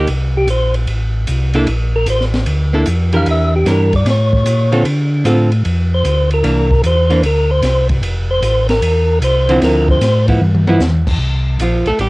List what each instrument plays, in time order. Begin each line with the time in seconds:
0.07 tonewheel organ C2, ride
0.37 tonewheel organ G4
0.47 tonewheel organ A#1 C5, hi-hat pedal, ride
0.74 ride
0.87 tonewheel organ A1, ride
1.27 tonewheel organ C2, hi-hat pedal, ride
1.54 hollow-body jazz guitar A#3 D4 E4 A4, ride
1.67 tonewheel organ A#1, ride
1.96 tonewheel organ A#4
2.06 tonewheel organ A1 C5, hi-hat pedal, ride
2.21 snare
2.34 snare, ride
2.46 tonewheel organ D2, ride
2.73 hollow-body jazz guitar A#3 D4 E4 A4
2.86 tonewheel organ F2, hi-hat pedal, ride
3.13 hollow-body jazz guitar E3 D4 G4 A#4, tonewheel organ F5, ride
3.26 tonewheel organ E2, ride
3.31 tonewheel organ E5
3.56 tonewheel organ G4
3.66 tonewheel organ G2, hollow-body jazz guitar E3 D4 G4 A#4, snare, hi-hat pedal, ride
3.71 tonewheel organ A#4
3.93 tonewheel organ D5, kick, ride
4.05 tonewheel organ A2, snare, ride
4.10 tonewheel organ C#5
4.33 kick
4.45 tonewheel organ A#2, hi-hat pedal, ride
4.72 hollow-body jazz guitar D3 C4 F4 A4, ride
4.85 tonewheel organ D3, ride
5.24 tonewheel organ A2, hollow-body jazz guitar D3 C4 F4 A4, hi-hat pedal, ride
5.52 ride
5.65 tonewheel organ F2, ride
5.94 tonewheel organ C5
6.04 tonewheel organ D2, hi-hat pedal, ride
6.31 tonewheel organ A#4, ride
6.43 tonewheel organ C2, hollow-body jazz guitar E3 A#3 D4, ride
6.71 kick
6.83 tonewheel organ E2 C5, hi-hat pedal, ride
7.10 hollow-body jazz guitar E3 A#3 D4, ride
7.22 tonewheel organ D2 A#4, ride
7.51 tonewheel organ C5
7.62 tonewheel organ C2, snare, hi-hat pedal, ride
7.89 kick, ride
8.02 tonewheel organ F1, ride
8.30 tonewheel organ C5
8.42 tonewheel organ A1, hi-hat pedal, ride
8.69 tonewheel organ A#4, snare, ride
8.81 tonewheel organ E2, ride
9.21 tonewheel organ C2 C5, hi-hat pedal, ride
9.49 hollow-body jazz guitar D3 F3 C4 E4, ride
9.61 tonewheel organ D2 A#4, snare, ride
9.88 tonewheel organ C5, kick
10.01 tonewheel organ A2, snare, hi-hat pedal, ride
10.28 hollow-body jazz guitar F3 B3 E4, kick, ride
10.41 tonewheel organ G2, mid tom
10.55 mid tom
10.67 hollow-body jazz guitar F3 B3 E4, mid tom
10.80 tonewheel organ E2, snare, hi-hat pedal
11.07 kick, crash
11.19 tonewheel organ C2
11.59 tonewheel organ A#1, hollow-body jazz guitar F3 F4, hi-hat pedal, ride
11.86 tonewheel organ A#1, hollow-body jazz guitar A3 A4, ride
11.99 tonewheel organ A1, hollow-body jazz guitar G3 G4, ride